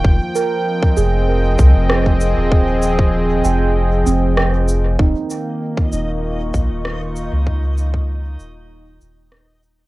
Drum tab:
SH |--x---x---x---x-|--x---x---x---x-|--x---x---x---x-|--x---x---x---x-|
SD |------------r---|------------r---|------------r---|------------r---|
BD |o----o----o--o--|o--o------------|o----o----o-----|o--o------------|